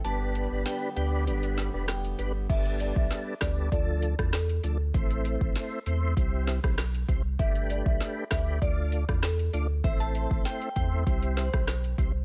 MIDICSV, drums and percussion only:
0, 0, Header, 1, 2, 480
1, 0, Start_track
1, 0, Tempo, 612245
1, 36, Time_signature, 4, 2, 24, 8
1, 9603, End_track
2, 0, Start_track
2, 0, Title_t, "Drums"
2, 36, Note_on_c, 9, 42, 73
2, 114, Note_off_c, 9, 42, 0
2, 275, Note_on_c, 9, 42, 75
2, 354, Note_off_c, 9, 42, 0
2, 515, Note_on_c, 9, 38, 59
2, 517, Note_on_c, 9, 42, 80
2, 594, Note_off_c, 9, 38, 0
2, 596, Note_off_c, 9, 42, 0
2, 756, Note_on_c, 9, 42, 75
2, 835, Note_off_c, 9, 42, 0
2, 998, Note_on_c, 9, 42, 88
2, 1076, Note_off_c, 9, 42, 0
2, 1122, Note_on_c, 9, 42, 58
2, 1200, Note_off_c, 9, 42, 0
2, 1235, Note_on_c, 9, 42, 71
2, 1236, Note_on_c, 9, 38, 61
2, 1314, Note_off_c, 9, 42, 0
2, 1315, Note_off_c, 9, 38, 0
2, 1474, Note_on_c, 9, 37, 84
2, 1476, Note_on_c, 9, 38, 107
2, 1477, Note_on_c, 9, 42, 57
2, 1552, Note_off_c, 9, 37, 0
2, 1555, Note_off_c, 9, 38, 0
2, 1556, Note_off_c, 9, 42, 0
2, 1604, Note_on_c, 9, 42, 53
2, 1683, Note_off_c, 9, 42, 0
2, 1715, Note_on_c, 9, 42, 79
2, 1793, Note_off_c, 9, 42, 0
2, 1956, Note_on_c, 9, 36, 121
2, 1956, Note_on_c, 9, 42, 71
2, 1957, Note_on_c, 9, 49, 98
2, 2035, Note_off_c, 9, 36, 0
2, 2035, Note_off_c, 9, 42, 0
2, 2035, Note_off_c, 9, 49, 0
2, 2082, Note_on_c, 9, 42, 59
2, 2161, Note_off_c, 9, 42, 0
2, 2196, Note_on_c, 9, 42, 80
2, 2274, Note_off_c, 9, 42, 0
2, 2322, Note_on_c, 9, 36, 97
2, 2400, Note_off_c, 9, 36, 0
2, 2435, Note_on_c, 9, 38, 60
2, 2437, Note_on_c, 9, 42, 79
2, 2514, Note_off_c, 9, 38, 0
2, 2515, Note_off_c, 9, 42, 0
2, 2672, Note_on_c, 9, 37, 102
2, 2675, Note_on_c, 9, 38, 122
2, 2675, Note_on_c, 9, 42, 74
2, 2678, Note_on_c, 9, 36, 90
2, 2751, Note_off_c, 9, 37, 0
2, 2753, Note_off_c, 9, 38, 0
2, 2754, Note_off_c, 9, 42, 0
2, 2757, Note_off_c, 9, 36, 0
2, 2916, Note_on_c, 9, 36, 107
2, 2917, Note_on_c, 9, 42, 88
2, 2995, Note_off_c, 9, 36, 0
2, 2995, Note_off_c, 9, 42, 0
2, 3154, Note_on_c, 9, 42, 75
2, 3232, Note_off_c, 9, 42, 0
2, 3284, Note_on_c, 9, 37, 100
2, 3285, Note_on_c, 9, 36, 99
2, 3363, Note_off_c, 9, 36, 0
2, 3363, Note_off_c, 9, 37, 0
2, 3393, Note_on_c, 9, 37, 85
2, 3396, Note_on_c, 9, 38, 103
2, 3397, Note_on_c, 9, 42, 60
2, 3471, Note_off_c, 9, 37, 0
2, 3474, Note_off_c, 9, 38, 0
2, 3475, Note_off_c, 9, 42, 0
2, 3524, Note_on_c, 9, 42, 52
2, 3602, Note_off_c, 9, 42, 0
2, 3634, Note_on_c, 9, 42, 85
2, 3712, Note_off_c, 9, 42, 0
2, 3876, Note_on_c, 9, 36, 120
2, 3876, Note_on_c, 9, 42, 72
2, 3954, Note_off_c, 9, 36, 0
2, 3954, Note_off_c, 9, 42, 0
2, 4002, Note_on_c, 9, 42, 61
2, 4080, Note_off_c, 9, 42, 0
2, 4116, Note_on_c, 9, 42, 77
2, 4194, Note_off_c, 9, 42, 0
2, 4242, Note_on_c, 9, 36, 102
2, 4320, Note_off_c, 9, 36, 0
2, 4356, Note_on_c, 9, 38, 63
2, 4358, Note_on_c, 9, 42, 76
2, 4434, Note_off_c, 9, 38, 0
2, 4436, Note_off_c, 9, 42, 0
2, 4596, Note_on_c, 9, 42, 73
2, 4675, Note_off_c, 9, 42, 0
2, 4836, Note_on_c, 9, 36, 104
2, 4838, Note_on_c, 9, 42, 85
2, 4915, Note_off_c, 9, 36, 0
2, 4916, Note_off_c, 9, 42, 0
2, 5075, Note_on_c, 9, 42, 74
2, 5076, Note_on_c, 9, 38, 64
2, 5153, Note_off_c, 9, 42, 0
2, 5154, Note_off_c, 9, 38, 0
2, 5205, Note_on_c, 9, 36, 102
2, 5205, Note_on_c, 9, 37, 97
2, 5283, Note_off_c, 9, 36, 0
2, 5283, Note_off_c, 9, 37, 0
2, 5314, Note_on_c, 9, 37, 87
2, 5317, Note_on_c, 9, 38, 111
2, 5317, Note_on_c, 9, 42, 62
2, 5393, Note_off_c, 9, 37, 0
2, 5395, Note_off_c, 9, 38, 0
2, 5396, Note_off_c, 9, 42, 0
2, 5445, Note_on_c, 9, 42, 52
2, 5524, Note_off_c, 9, 42, 0
2, 5555, Note_on_c, 9, 36, 96
2, 5555, Note_on_c, 9, 42, 80
2, 5633, Note_off_c, 9, 36, 0
2, 5634, Note_off_c, 9, 42, 0
2, 5796, Note_on_c, 9, 36, 116
2, 5796, Note_on_c, 9, 42, 73
2, 5874, Note_off_c, 9, 42, 0
2, 5875, Note_off_c, 9, 36, 0
2, 5923, Note_on_c, 9, 42, 62
2, 6001, Note_off_c, 9, 42, 0
2, 6036, Note_on_c, 9, 42, 82
2, 6115, Note_off_c, 9, 42, 0
2, 6162, Note_on_c, 9, 36, 103
2, 6240, Note_off_c, 9, 36, 0
2, 6276, Note_on_c, 9, 38, 64
2, 6277, Note_on_c, 9, 42, 80
2, 6354, Note_off_c, 9, 38, 0
2, 6356, Note_off_c, 9, 42, 0
2, 6513, Note_on_c, 9, 37, 99
2, 6515, Note_on_c, 9, 38, 121
2, 6516, Note_on_c, 9, 42, 74
2, 6518, Note_on_c, 9, 36, 92
2, 6591, Note_off_c, 9, 37, 0
2, 6593, Note_off_c, 9, 38, 0
2, 6594, Note_off_c, 9, 42, 0
2, 6597, Note_off_c, 9, 36, 0
2, 6756, Note_on_c, 9, 36, 108
2, 6757, Note_on_c, 9, 42, 87
2, 6835, Note_off_c, 9, 36, 0
2, 6836, Note_off_c, 9, 42, 0
2, 6994, Note_on_c, 9, 42, 73
2, 7073, Note_off_c, 9, 42, 0
2, 7125, Note_on_c, 9, 36, 103
2, 7125, Note_on_c, 9, 37, 94
2, 7203, Note_off_c, 9, 36, 0
2, 7203, Note_off_c, 9, 37, 0
2, 7233, Note_on_c, 9, 37, 91
2, 7236, Note_on_c, 9, 38, 104
2, 7237, Note_on_c, 9, 42, 59
2, 7312, Note_off_c, 9, 37, 0
2, 7314, Note_off_c, 9, 38, 0
2, 7315, Note_off_c, 9, 42, 0
2, 7364, Note_on_c, 9, 42, 52
2, 7442, Note_off_c, 9, 42, 0
2, 7474, Note_on_c, 9, 42, 78
2, 7553, Note_off_c, 9, 42, 0
2, 7715, Note_on_c, 9, 42, 74
2, 7716, Note_on_c, 9, 36, 121
2, 7794, Note_off_c, 9, 42, 0
2, 7795, Note_off_c, 9, 36, 0
2, 7842, Note_on_c, 9, 42, 60
2, 7920, Note_off_c, 9, 42, 0
2, 7955, Note_on_c, 9, 42, 77
2, 8034, Note_off_c, 9, 42, 0
2, 8082, Note_on_c, 9, 36, 103
2, 8160, Note_off_c, 9, 36, 0
2, 8195, Note_on_c, 9, 38, 65
2, 8197, Note_on_c, 9, 42, 76
2, 8274, Note_off_c, 9, 38, 0
2, 8275, Note_off_c, 9, 42, 0
2, 8323, Note_on_c, 9, 42, 55
2, 8401, Note_off_c, 9, 42, 0
2, 8435, Note_on_c, 9, 42, 72
2, 8438, Note_on_c, 9, 36, 92
2, 8514, Note_off_c, 9, 42, 0
2, 8517, Note_off_c, 9, 36, 0
2, 8676, Note_on_c, 9, 36, 110
2, 8677, Note_on_c, 9, 42, 88
2, 8755, Note_off_c, 9, 36, 0
2, 8755, Note_off_c, 9, 42, 0
2, 8800, Note_on_c, 9, 42, 59
2, 8879, Note_off_c, 9, 42, 0
2, 8914, Note_on_c, 9, 42, 72
2, 8915, Note_on_c, 9, 38, 63
2, 8992, Note_off_c, 9, 42, 0
2, 8993, Note_off_c, 9, 38, 0
2, 9044, Note_on_c, 9, 36, 101
2, 9044, Note_on_c, 9, 37, 96
2, 9122, Note_off_c, 9, 37, 0
2, 9123, Note_off_c, 9, 36, 0
2, 9153, Note_on_c, 9, 37, 90
2, 9155, Note_on_c, 9, 38, 108
2, 9156, Note_on_c, 9, 42, 61
2, 9231, Note_off_c, 9, 37, 0
2, 9234, Note_off_c, 9, 38, 0
2, 9235, Note_off_c, 9, 42, 0
2, 9284, Note_on_c, 9, 42, 51
2, 9362, Note_off_c, 9, 42, 0
2, 9394, Note_on_c, 9, 36, 97
2, 9394, Note_on_c, 9, 42, 81
2, 9472, Note_off_c, 9, 42, 0
2, 9473, Note_off_c, 9, 36, 0
2, 9603, End_track
0, 0, End_of_file